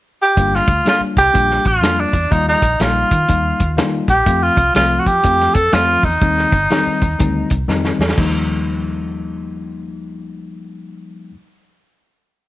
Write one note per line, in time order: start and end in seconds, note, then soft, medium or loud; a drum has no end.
0.22 0.57 G4 medium
0.37 0.60 G1 loud
0.37 0.70 G3 medium
0.37 0.70 A#3 medium
0.37 0.70 D4 medium
0.37 0.70 F4 medium
0.37 kick medium
0.37 closed hi-hat medium
0.54 0.87 F4 medium
0.54 snare soft
0.68 0.81 D2 medium
0.68 kick medium
0.68 closed hi-hat medium
0.85 1.18 G3 medium
0.85 1.18 A#3 medium
0.85 1.18 D4 medium
0.85 1.18 F4 medium
0.85 1.02 F4 medium
0.85 snare medium
0.85 closed hi-hat medium
1.01 muted fingered electric bass stroke soft
1.17 1.30 C2 medium
1.17 1.69 G4 loud
1.17 kick medium
1.17 closed hi-hat medium
1.33 1.57 A#1 medium
1.33 1.66 G3 medium
1.33 1.66 A#3 medium
1.33 1.66 D4 medium
1.33 1.67 F4 medium
1.33 kick medium
1.33 closed hi-hat medium
1.51 snare soft
1.65 1.78 A1 medium
1.65 2.02 F4 medium
1.65 kick medium
1.65 closed hi-hat medium
1.81 2.04 F2 medium
1.81 2.15 G3 medium
1.81 2.15 A#3 medium
1.81 2.15 D4 medium
1.81 2.15 F4 medium
1.81 snare loud
1.81 closed hi-hat medium
2.00 2.34 D4 medium
2.13 2.26 E2 medium
2.13 kick medium
2.13 closed hi-hat medium
2.31 2.54 D#2 medium
2.31 2.64 G3 medium
2.31 2.64 A#3 medium
2.31 2.64 D#4 medium
2.31 2.47 D#4 medium
2.31 2.64 F4 medium
2.31 kick loud
2.31 closed hi-hat medium
2.48 2.83 D#4 medium
2.48 snare soft
2.62 2.75 A#1 medium
2.62 kick medium
2.62 closed hi-hat medium
2.80 3.02 A#1 medium
2.80 3.13 G3 medium
2.80 3.13 A#3 medium
2.80 3.13 D#4 medium
2.80 3.13 F4 medium
2.80 3.79 F4 medium
2.80 snare loud
2.80 closed hi-hat medium
3.11 3.24 D#3 medium
3.11 kick medium
3.11 closed hi-hat medium
3.28 3.52 D#2 medium
3.28 3.61 G3 medium
3.28 3.61 A#3 medium
3.28 3.61 D#4 medium
3.28 3.62 F4 medium
3.28 kick medium
3.28 closed hi-hat medium
3.60 3.79 D#2 medium
3.60 kick medium
3.60 closed hi-hat medium
3.77 4.00 D#3 medium
3.77 4.10 G3 medium
3.77 4.10 A#3 medium
3.77 4.10 D#4 medium
3.77 4.11 F4 medium
3.77 snare loud
3.77 closed hi-hat medium
4.08 4.21 A#1 medium
4.08 4.44 G4 medium
4.08 kick medium
4.08 closed hi-hat medium
4.26 4.49 F2 medium
4.26 4.59 F3 medium
4.26 4.59 A3 medium
4.26 4.59 C4 medium
4.26 4.59 F4 medium
4.26 kick loud
4.26 closed hi-hat medium
4.43 4.75 F4 medium
4.57 4.70 C2 medium
4.57 kick medium
4.57 closed hi-hat medium
4.75 4.98 C2 medium
4.75 5.08 F3 medium
4.75 5.08 A3 medium
4.75 5.08 C4 medium
4.75 5.08 F4 medium
4.75 5.01 F4 medium
4.75 snare loud
4.75 closed hi-hat medium
4.99 5.09 F#4 medium
5.06 5.19 F3 medium
5.06 5.56 G4 loud
5.06 kick medium
5.06 closed hi-hat medium
5.23 5.47 F2 medium
5.23 5.57 F3 medium
5.23 5.57 A3 soft
5.23 5.57 C4 medium
5.23 5.57 F4 medium
5.23 kick medium
5.23 closed hi-hat medium
5.40 snare soft
5.54 5.68 F2 medium
5.54 5.75 A4 medium
5.54 kick medium
5.54 closed hi-hat medium
5.72 5.96 F2 medium
5.72 6.05 F3 medium
5.72 6.05 A3 medium
5.72 6.06 C4 medium
5.72 6.06 F4 medium
5.72 snare loud
5.72 closed hi-hat medium
6.03 6.17 E2 medium
6.03 7.69 D#4 medium
6.03 kick medium
6.03 open hi-hat soft
6.21 6.44 D#2 medium
6.21 6.55 D#3 medium
6.21 6.55 G3 medium
6.21 6.55 C4 medium
6.21 6.55 D#4 medium
6.21 kick loud
6.21 closed hi-hat medium
6.38 snare soft
6.52 6.65 G1 medium
6.52 kick loud
6.52 closed hi-hat medium
6.70 7.03 D#3 medium
6.70 7.04 G3 medium
6.70 7.03 C4 medium
6.70 7.04 D#4 medium
6.70 snare loud
6.70 closed hi-hat medium
6.87 muted fingered electric bass stroke soft
7.01 7.15 D#2 medium
7.01 kick medium
7.01 closed hi-hat medium
7.19 7.43 D2 medium
7.19 7.52 D#3 medium
7.19 7.52 G3 medium
7.19 7.53 C4 medium
7.19 7.53 D#4 medium
7.19 kick loud
7.19 closed hi-hat medium
7.50 7.64 C2 medium
7.50 kick medium
7.50 closed hi-hat medium
7.68 7.91 F2 medium
7.68 8.01 D#3 medium
7.68 8.01 G3 medium
7.68 8.01 C4 medium
7.68 8.01 D#4 medium
7.68 snare medium
7.85 snare medium
7.99 8.12 E2 medium
7.99 snare medium
8.09 snare medium
8.16 11.32 D#2 medium
8.16 11.30 F3 medium
8.16 11.32 G3 medium
8.16 11.33 A#3 medium
8.16 11.34 D#4 medium
8.16 kick loud
8.16 crash medium